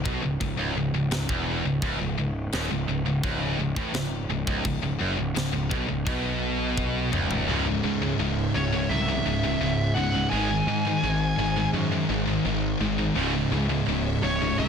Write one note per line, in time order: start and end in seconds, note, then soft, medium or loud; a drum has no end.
0.05 0.22 B1 medium
0.05 0.22 B2 loud
0.05 kick loud
0.22 0.39 C#1 medium
0.22 0.39 C#2 medium
0.40 0.57 C#1 medium
0.40 0.56 C#2 medium
0.40 kick medium
0.40 china medium
0.57 0.74 C#1 loud
0.57 0.74 C#2 loud
0.75 0.92 C#1 medium
0.75 0.93 C#2 medium
0.93 1.10 C#1 medium
0.93 1.10 C#2 medium
1.11 1.28 C#1 medium
1.11 1.29 C#2 medium
1.11 snare loud
1.11 china medium
1.29 1.62 E1 medium
1.29 1.64 E2 medium
1.29 kick loud
1.65 1.81 C#1 medium
1.65 1.82 C#2 medium
1.82 1.99 C#1 medium
1.82 1.99 C#2 loud
1.82 kick loud
1.82 china medium
1.99 2.16 C#1 medium
1.99 2.17 C#2 medium
2.17 2.50 C#1 medium
2.17 2.46 C#2 medium
2.52 2.69 D#1 medium
2.52 2.70 D#2 loud
2.52 snare loud
2.52 china medium
2.71 2.87 C#1 medium
2.71 2.88 C#2 medium
2.89 3.05 C#1 medium
2.89 3.05 C#2 medium
3.06 3.22 C#1 medium
3.06 3.23 C#2 medium
3.23 3.56 C#1 medium
3.23 3.58 C#2 loud
3.23 kick loud
3.23 china medium
3.59 3.75 C#1 medium
3.59 3.77 C#2 medium
3.76 3.93 A1 medium
3.76 3.94 A2 loud
3.76 kick loud
3.94 4.27 C#1 medium
3.94 4.23 C#2 medium
3.94 snare loud
3.94 china medium
4.29 4.46 C#1 medium
4.29 4.46 C#2 medium
4.47 4.64 C#1 medium
4.47 4.64 C#2 medium
4.47 kick loud
4.65 4.82 C#1 medium
4.65 4.81 C#2 medium
4.65 kick medium
4.65 china medium
4.82 4.99 C#1 medium
4.82 4.99 C#2 medium
4.99 5.17 F#1 loud
4.99 5.17 F#2 loud
5.17 5.35 C#1 medium
5.17 5.34 C#2 medium
5.35 5.53 C#1 medium
5.35 5.51 C#2 medium
5.35 snare loud
5.35 china medium
5.53 5.71 C#1 medium
5.53 5.70 C#2 medium
5.70 5.88 B1 medium
5.70 5.88 B2 loud
5.70 kick medium
5.88 6.06 C#1 medium
5.88 6.06 C#2 medium
6.06 7.09 B1 medium
6.06 7.12 B2 loud
6.06 kick loud
6.06 china medium
6.77 kick medium
7.12 7.46 C#1 medium
7.12 7.46 C#2 loud
7.12 mid tom medium
7.31 floor tom medium
7.47 7.77 C#1 medium
7.47 7.64 C#2 medium
7.47 7.64 G#2 medium
7.47 7.64 C#3 loud
7.47 10.30 C#4 medium
7.47 14.68 G#4 medium
7.47 10.30 C#5 medium
7.47 10.29 E5 medium
7.67 7.84 C#2 medium
7.67 7.83 G#2 medium
7.84 8.13 C#2 loud
7.84 8.01 C#2 medium
7.84 8.01 G#2 medium
7.84 8.19 C#3 medium
8.02 8.18 C#2 medium
8.02 8.19 G#2 loud
8.19 8.48 C#1 medium
8.19 8.51 C#2 medium
8.19 8.52 G#2 medium
8.19 8.55 C#3 loud
8.55 8.84 C#1 medium
8.55 8.72 C#2 medium
8.55 8.71 G#2 medium
8.55 8.89 C#3 medium
8.55 8.91 C#5 medium
8.73 8.90 C#2 medium
8.73 8.90 G#2 medium
8.89 9.19 C2 medium
8.89 9.08 C#2 medium
8.89 9.07 G#2 medium
8.89 9.26 C#3 loud
8.89 9.99 E5 medium
9.09 9.25 C#2 medium
9.09 9.25 G#2 medium
9.26 9.54 C#1 medium
9.26 9.43 C#2 medium
9.26 9.42 G#2 medium
9.26 9.60 C#3 loud
9.43 9.60 C#2 medium
9.43 9.60 G#2 medium
9.61 9.90 C#1 loud
9.61 9.93 C#2 medium
9.61 9.93 G#2 medium
9.61 9.96 C#3 loud
9.94 10.25 C#1 medium
9.94 10.13 C#2 medium
9.94 10.13 G#2 medium
9.94 10.30 C#3 loud
9.94 10.28 F#5 loud
10.14 10.31 C#2 medium
10.14 10.30 G#2 medium
10.30 10.61 G#1 loud
10.30 10.47 G#2 medium
10.30 10.48 D#3 medium
10.30 13.13 G#3 medium
10.30 10.48 G#3 loud
10.30 13.13 D#4 medium
10.30 13.13 C5 medium
10.30 11.69 G#5 loud
10.50 10.68 G#2 medium
10.50 10.67 D#3 medium
10.67 10.96 G#2 loud
10.67 10.86 G#2 medium
10.67 10.86 D#3 medium
10.67 11.04 G#3 medium
10.87 11.02 G#2 medium
10.87 11.02 D#3 medium
11.03 11.32 G#1 medium
11.03 11.35 G#2 medium
11.03 11.35 D#3 medium
11.03 11.38 G#3 loud
11.38 11.67 G#1 medium
11.38 11.56 G#2 medium
11.38 11.56 D#3 medium
11.38 11.73 G#3 medium
11.57 11.72 G#2 medium
11.57 11.73 D#3 medium
11.73 12.02 F#2 loud
11.73 11.91 G#2 medium
11.73 11.91 D#3 medium
11.73 12.09 G#3 loud
11.92 12.08 G#2 medium
11.92 12.08 D#3 medium
12.09 12.38 G#1 medium
12.09 12.25 G#2 medium
12.09 12.25 D#3 medium
12.09 12.45 G#3 medium
12.26 12.44 G#2 medium
12.26 12.44 D#3 medium
12.45 12.74 G#1 medium
12.45 12.77 G#2 medium
12.45 12.77 D#3 medium
12.45 12.80 G#3 loud
12.80 13.09 G#1 medium
12.80 12.97 G#2 medium
12.80 12.97 D#3 medium
12.80 13.14 G#3 loud
12.98 13.15 G#2 medium
12.98 13.15 D#3 medium
13.15 13.45 C#1 loud
13.15 13.31 C#2 medium
13.15 13.32 G#2 loud
13.15 13.32 C#3 loud
13.15 14.68 C#4 medium
13.15 14.68 C#5 medium
13.15 14.68 E5 medium
13.33 13.51 C#2 medium
13.33 13.51 G#2 medium
13.52 13.80 C#2 loud
13.52 13.69 C#2 medium
13.52 13.68 G#2 medium
13.52 13.87 C#3 loud
13.69 13.87 C#2 medium
13.69 13.87 G#2 medium
13.88 14.16 C#1 medium
13.88 14.20 C#2 medium
13.88 14.20 G#2 medium
13.88 14.23 C#3 loud
14.23 14.52 C#1 medium
14.23 14.41 C#2 medium
14.23 14.41 G#2 medium
14.23 14.58 C#3 loud
14.23 14.58 C#5 medium
14.42 14.59 C#2 medium
14.42 14.58 G#2 medium
14.59 14.68 C2 loud
14.59 14.68 C#2 medium
14.59 14.68 G#2 medium
14.59 14.68 C#3 loud
14.59 14.68 E5 medium